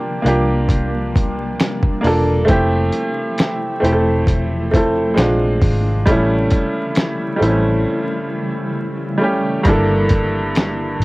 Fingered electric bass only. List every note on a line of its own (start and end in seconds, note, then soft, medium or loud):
0.25 1.55 C2 medium
2.04 2.45 E1 medium
2.49 2.89 F1 loud
3.83 5.13 E1 medium
5.18 5.58 A#1 loud
5.62 6.03 G#1 loud
6.07 6.48 A1 loud
7.42 7.84 A1 medium
9.66 10.96 G1 medium
11.00 11.05 A1 medium